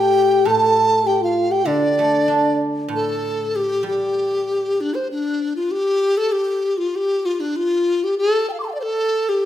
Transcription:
Already playing: guzheng A2, xiao G4, dizi G5
0.45 guzheng A2, xiao A4, dizi A5
1.05 xiao G4, dizi G5
1.21 xiao F4, dizi F5
1.50 xiao G4, dizi G5
1.65 guzheng D3, xiao D4, dizi D5
1.99 guzheng A3
2.28 guzheng D4
2.88 guzheng A2
2.96 dizi A4
3.56 dizi G4
3.83 guzheng G3
3.87 dizi G4
4.81 dizi D4
4.94 dizi C5
5.11 dizi D4
5.56 dizi F4
5.71 dizi G4
6.17 dizi A4
6.32 dizi G4
6.78 dizi F4
6.96 dizi G4
7.26 dizi F4
7.40 dizi D4
7.56 dizi F4
8.04 dizi G4
8.18 dizi A4
8.49 dizi F5 G5
8.60 dizi A5 C6 D6
8.66 dizi G5
8.71 dizi D5 F5
8.80 dizi A4 C5
9.29 dizi G4

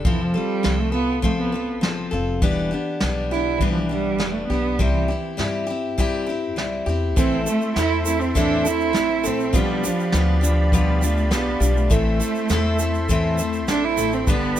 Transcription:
0.04 upright bass F1, cello E3, steel-string acoustic guitar F3 C4 F4 A4, kick
0.22 cello F3
0.34 cello G3, steel-string acoustic guitar C4 F4 A4
0.63 upright bass C2, steel-string acoustic guitar F3 C4 F4 A4, snare
0.81 cello A3
0.92 cello B3, steel-string acoustic guitar F4 A4
1.22 steel-string acoustic guitar F3 C4 F4 A4, cello A3, kick
1.38 cello B3
1.52 steel-string acoustic guitar C4 F4 A4
1.81 upright bass F1, steel-string acoustic guitar F3 C4 F4 A4, snare
2.11 upright bass F1, steel-string acoustic guitar C4 F4 A4
2.42 upright bass E1, steel-string acoustic guitar E3 G3 B3 D4 G4, kick
2.71 steel-string acoustic guitar B3 D4 G4
3.00 upright bass B1, steel-string acoustic guitar G3 B3 D4 G4, snare
3.31 steel-string acoustic guitar D4 G4, cello E4
3.35 steel-string acoustic guitar B3
3.58 cello E3, steel-string acoustic guitar E3 G3 B3 D4 G4, kick
3.72 cello F3
3.87 cello G3, steel-string acoustic guitar D4 G4
3.93 steel-string acoustic guitar B3
4.18 upright bass E1, steel-string acoustic guitar G3 B3 D4 G4, snare
4.32 cello A3
4.48 upright bass B1, cello B3, steel-string acoustic guitar D4 G4
4.53 steel-string acoustic guitar B3
4.79 upright bass C2, steel-string acoustic guitar C3 G3 C4 E4 G4, cello G3, kick
4.94 cello E3
5.08 steel-string acoustic guitar C4 E4 G4
5.37 upright bass G2, steel-string acoustic guitar G3 C4 E4 G4, snare
5.67 steel-string acoustic guitar C4 E4 G4
5.98 steel-string acoustic guitar C3 G3 C4 E4 G4, kick
6.27 steel-string acoustic guitar C4 E4 G4
6.56 upright bass C2, steel-string acoustic guitar G3 C4 E4 G4, snare
6.86 upright bass E2, steel-string acoustic guitar C4 E4 G4
7.16 upright bass A1, steel-string acoustic guitar A2 E3 A3 C4 E4 A4, cello C4, accordion A4 C5 E5 C6, kick, shaker
7.46 cello A3, steel-string acoustic guitar A3 C4 E4 A4, shaker
7.61 shaker
7.76 upright bass E2, steel-string acoustic guitar A3 C4 E4, cello E4, snare, shaker
7.80 steel-string acoustic guitar A4
8.05 steel-string acoustic guitar A3 C4 E4 A4, cello E4, shaker
8.21 cello C4, shaker
8.35 steel-string acoustic guitar A2 E3 A3 C4 E4 A4, cello D4, kick, shaker
8.65 steel-string acoustic guitar A3 C4 E4 A4, cello E4, shaker
8.80 shaker
8.93 upright bass A1, steel-string acoustic guitar A3 C4 E4 A4, snare, shaker
9.24 upright bass A#1, steel-string acoustic guitar A3 C4 E4 A4, cello C4, shaker
9.40 shaker
9.53 upright bass B1, steel-string acoustic guitar B2 F3 B3 D4 F4 G4, cello G3, accordion G4 D5 F5 B5, kick, shaker
9.83 cello F3, steel-string acoustic guitar B3 D4 F4 G4, shaker
10.00 shaker
10.12 upright bass D2, steel-string acoustic guitar B3 D4 F4 G4, snare, shaker
10.41 steel-string acoustic guitar B3 D4 F4 G4, shaker
10.47 cello F3
10.72 steel-string acoustic guitar B2 F3 B3 D4 F4 G4, cello G3, kick, shaker
11.01 cello A3, steel-string acoustic guitar B3 D4 F4 G4, shaker
11.17 shaker
11.31 upright bass B1, steel-string acoustic guitar B3 D4 F4 G4, cello B3, snare, shaker
11.60 upright bass B1, cello G3, steel-string acoustic guitar B3 D4 F4 G4, shaker
11.77 cello A3, shaker
11.90 upright bass A1, steel-string acoustic guitar A2 E3 A3 C4 E4 A4, accordion A4 C5 E5 C6, kick, shaker
12.20 steel-string acoustic guitar A3 C4 E4 A4, shaker
12.35 shaker
12.49 upright bass E2, steel-string acoustic guitar A3 C4 E4 A4, snare, shaker
12.79 steel-string acoustic guitar A3 C4 E4 A4, shaker
12.94 shaker
13.09 steel-string acoustic guitar A2 E3 A3 C4 E4 A4, kick, shaker
13.38 steel-string acoustic guitar A3 C4 E4 A4, shaker
13.53 shaker
13.68 upright bass A1, steel-string acoustic guitar A3 C4 E4, cello D4, snare, shaker
13.72 steel-string acoustic guitar A4
13.85 cello E4
13.97 upright bass A1, steel-string acoustic guitar C4 E4 A4, shaker
14.01 steel-string acoustic guitar A3
14.12 cello C4, shaker
14.26 upright bass G1, steel-string acoustic guitar G2 D3 G3 B3 D4 G4, cello B3, accordion G4 B4 D5 B5, kick, shaker
14.57 steel-string acoustic guitar G4, shaker

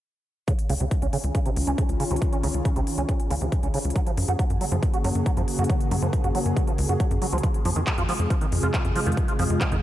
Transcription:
0.48 acid bass C#3, analog synth pad D#3 C#4 F4 G#4, kick, closed hi-hat
0.59 closed hi-hat
0.69 analog synth bass C#2, acid bass C#3, open hi-hat
0.80 analog synth bass C#2, acid bass C3, closed hi-hat
0.91 kick, closed hi-hat
1.02 analog synth bass C#2, acid bass C#4, closed hi-hat
1.13 acid bass C#3, open hi-hat
1.24 analog synth bass C#2, closed hi-hat
1.35 acid bass C#3, kick, closed hi-hat
1.46 acid bass C3, closed hi-hat
1.56 analog synth bass C#2, open hi-hat
1.67 analog synth bass C#2, acid bass C#4, closed hi-hat
1.78 acid bass C#3, kick, closed hi-hat
1.89 analog synth bass C#2, closed hi-hat
2.00 acid bass C#3, open hi-hat
2.11 analog synth bass C#2, acid bass C3, closed hi-hat
2.16 closed hi-hat
2.22 kick, closed hi-hat
2.33 acid bass C#4, closed hi-hat
2.43 analog synth bass C#2, acid bass C#3, open hi-hat
2.54 analog synth bass C#2, closed hi-hat
2.65 acid bass C#3, kick, closed hi-hat
2.76 analog synth bass C#2, acid bass C3, closed hi-hat
2.87 open hi-hat
2.98 analog synth bass C#2, acid bass C#4, closed hi-hat
3.09 acid bass C#3, kick, closed hi-hat
3.20 closed hi-hat
3.30 analog synth bass C#2, acid bass C#3, open hi-hat
3.41 analog synth bass C#2, acid bass C3, closed hi-hat
3.52 kick, closed hi-hat
3.63 analog synth bass C#2, acid bass C#4, closed hi-hat
3.74 acid bass C#3, open hi-hat
3.85 analog synth bass C#2, closed hi-hat
3.90 closed hi-hat
3.96 analog synth pad C#3 A#3 F#4, acid bass F#3, kick, closed hi-hat
4.07 acid bass F3, closed hi-hat
4.17 analog synth bass F#2, open hi-hat
4.28 analog synth bass F#2, acid bass F#4, closed hi-hat
4.39 acid bass F#3, kick, closed hi-hat
4.50 analog synth bass F#2, closed hi-hat
4.61 acid bass F#3, open hi-hat
4.72 analog synth bass F#2, acid bass F3, closed hi-hat
4.83 kick, closed hi-hat
4.93 acid bass F#4, closed hi-hat
5.04 analog synth bass F#2, acid bass F#3, open hi-hat
5.15 analog synth bass F#2, closed hi-hat
5.26 acid bass F#3, kick, closed hi-hat
5.37 analog synth bass F#2, acid bass F3, closed hi-hat
5.48 open hi-hat
5.59 analog synth bass F#2, acid bass F#4, closed hi-hat
5.64 closed hi-hat
5.70 acid bass F#3, kick, closed hi-hat
5.80 closed hi-hat
5.91 analog synth bass F#2, acid bass F#3, open hi-hat
6.02 analog synth bass F#2, acid bass F3, closed hi-hat
6.13 kick, closed hi-hat
6.24 analog synth bass F#2, acid bass F#4, closed hi-hat
6.35 acid bass F#3, open hi-hat
6.46 analog synth bass F#2, closed hi-hat
6.56 acid bass F#3, kick, closed hi-hat
6.67 acid bass F3, closed hi-hat
6.78 analog synth bass C#2, open hi-hat
6.89 analog synth bass F#2, acid bass F#4, closed hi-hat
7.00 acid bass F#3, kick, closed hi-hat
7.11 analog synth bass F#2, closed hi-hat
7.22 acid bass F#3, open hi-hat
7.33 analog synth bass C#2, acid bass F3, closed hi-hat
7.38 closed hi-hat
7.43 analog synth pad C3 G#3 F4, acid bass F3, kick, closed hi-hat
7.54 closed hi-hat
7.65 analog synth bass F2, acid bass F3, open hi-hat
7.76 analog synth bass F2, acid bass D#3, closed hi-hat
7.87 kick, clap, closed hi-hat
7.98 analog synth bass F2, acid bass F4, closed hi-hat
8.09 acid bass F3, clap, open hi-hat
8.20 analog synth bass F2, closed hi-hat
8.30 acid bass F3, kick, closed hi-hat
8.41 acid bass D#3, closed hi-hat
8.52 analog synth bass F2, open hi-hat
8.63 analog synth bass F2, acid bass F4, closed hi-hat
8.74 acid bass F3, kick, clap, closed hi-hat
8.85 analog synth bass F2, closed hi-hat
8.96 acid bass F3, open hi-hat
9.06 analog synth bass F2, acid bass D#3, closed hi-hat
9.12 closed hi-hat
9.17 kick, closed hi-hat
9.28 acid bass F4, closed hi-hat
9.39 analog synth bass F2, acid bass F3, open hi-hat
9.50 analog synth bass F2, closed hi-hat
9.61 acid bass F3, kick, clap, closed hi-hat
9.72 analog synth bass F2, acid bass D#3, closed hi-hat

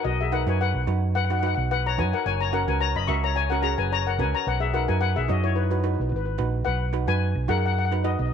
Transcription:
Already playing: steel pan D#4 F#4 B4
0.04 fingered electric bass B1, steel pan F#4 D#5
0.21 steel pan G#4 E5
0.32 steel pan D#4 F#4 A#4 B4 F#5
0.46 fingered electric bass F#2, steel pan D#4 F#4 B4 C#5 G#5
0.61 steel pan B4 F#5
0.74 fingered electric bass B1
0.87 fingered electric bass F#2, steel pan D#4 F#4 B4
1.15 steel pan B4 F#5
1.30 steel pan D#4 F#4 B4 F#5
1.39 steel pan D#4 F#4 B4 F#5
1.47 steel pan F#5
1.55 fingered electric bass B1, steel pan F#5
1.71 steel pan B4 F#5
1.86 steel pan C#5 A#5
1.98 fingered electric bass F#2, steel pan D#4 F#4 B4 G#5
2.13 steel pan A#4 F#5
2.25 fingered electric bass F#1, steel pan C#5 G#5
2.40 steel pan C#5 A#5
2.53 steel pan C#4 F#4 A#4 F#5
2.68 fingered electric bass C#2, steel pan C#4 F#4 A#4 B4 G#5
2.81 steel pan C#5 A#5
2.96 fingered electric bass F#1, steel pan D#5 B5
3.07 fingered electric bass C#2, steel pan C#4 F#4 A#4 E5 C#6
3.24 steel pan C#5 A#5
3.36 steel pan C#5 G#5
3.50 steel pan C#4 F#4 A#4 F#5
3.62 steel pan C#4 F#4 G#4 C#5 A#5
3.78 fingered electric bass F#1, steel pan B4 G#5
3.92 steel pan C#5 A#5
4.07 steel pan A#4 F#5
4.18 fingered electric bass C#2, steel pan C#4 F#4 A#4 B4 G#5
4.34 steel pan C#5 A#5
4.47 fingered electric bass B1, steel pan B4 F#5
4.60 steel pan G#4 E5
4.74 steel pan D#4 F#4 A#4 B4 F#5
4.88 fingered electric bass F#2, steel pan D#4 F#4 A#4 B4 G#5
5.01 steel pan B4 F#5
5.16 fingered electric bass B1, steel pan G#4 E5
5.28 fingered electric bass F#2, steel pan D#4 F#4 C#5 D#5
5.44 steel pan E4 C#5
5.55 steel pan D#4 B4
5.64 steel pan B4
5.71 steel pan D#4 F#4 B4
5.79 steel pan B4
5.84 steel pan D#4 F#4 B4
5.94 steel pan B4
6.00 fingered electric bass B1, steel pan B4
6.09 fingered electric bass G#1, steel pan B4
6.16 steel pan B4
6.25 steel pan B4
6.38 fingered electric bass A#1, steel pan D#4 F#4 B4
6.65 fingered electric bass B1, steel pan B4 F#5
6.93 steel pan D#4 F#4 B4
7.07 fingered electric bass F#2, steel pan D#4 F#4 B4 G#5
7.35 fingered electric bass B1
7.48 fingered electric bass F#2, steel pan D#4 F#4 G#4 A#4 F#5
7.58 steel pan F#5
7.66 steel pan F#5
7.72 steel pan F#5
7.79 steel pan F#5
7.85 steel pan F#5
7.92 steel pan D#4 F#4 B4
8.04 steel pan D#4 F#4 B4 D#5
8.11 steel pan D#5
8.19 fingered electric bass B1, steel pan D#5
8.26 steel pan D#5

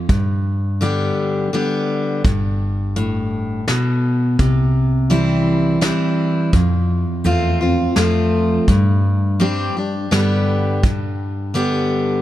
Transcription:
0.09 fingered electric bass G2, steel-string acoustic guitar G2, kick, closed hi-hat
0.81 steel-string acoustic guitar D3 G3 B3 G4, closed hi-hat
1.53 steel-string acoustic guitar D3 G3 B3 G4
2.24 fingered electric bass G1, steel-string acoustic guitar G2, kick, closed hi-hat
2.96 steel-string acoustic guitar A2, closed hi-hat
3.68 steel-string acoustic guitar B2, snare, closed hi-hat
4.39 fingered electric bass C2, steel-string acoustic guitar C3, kick, closed hi-hat
5.10 steel-string acoustic guitar E3 G3 C4 E4, closed hi-hat
5.81 steel-string acoustic guitar E3 G3 C4 E4, snare, closed hi-hat
6.53 fingered electric bass F2, steel-string acoustic guitar F2, kick, closed hi-hat
7.24 fingered electric bass E2, steel-string acoustic guitar A3 C4 F4, closed hi-hat
7.61 steel-string acoustic guitar C4 F4
7.96 fingered electric bass F2, steel-string acoustic guitar F3 A3 C4 F4, snare, closed hi-hat
8.68 fingered electric bass G2, steel-string acoustic guitar G2, kick, closed hi-hat
9.39 steel-string acoustic guitar G3 C4 D4 G4, closed hi-hat
9.77 steel-string acoustic guitar D4 G4
10.11 fingered electric bass G2, steel-string acoustic guitar D3 G3 B3 G4, snare, closed hi-hat
10.83 steel-string acoustic guitar G2, kick, closed hi-hat
11.54 steel-string acoustic guitar D3 G3 B3 G4, closed hi-hat

